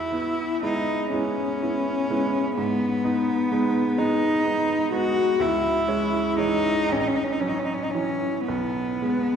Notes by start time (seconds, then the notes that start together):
Already playing: E2 E4
0.12 B3 E4
0.63 G#3 B3 D#4 E4
1.12 G#3 B3 C#4 E4
1.62 B3 E4
2.10 G#3 B3 E4
2.57 G#2 B3
3.04 B3 D#4
3.52 G#3 B3 D#4
3.98 G#3 B3 D#4
4.45 B3 D#4
4.92 G#3 B3 D#4 F#4
5.39 C#2 E4
5.88 G#3 C#4
6.38 E3 G#3 C#4 D#4
6.89 A1 C#4
7.00 D#4
7.07 C#4
7.15 D#4
7.24 C#4
7.32 D#4
7.40 F#3 C#4
7.48 D#4
7.59 C#4
7.65 D#4
7.74 C#4
7.83 D#4
7.91 E3 C#4
7.95 F#3 C#4
8.48 B1 B3
9.02 G#3 B3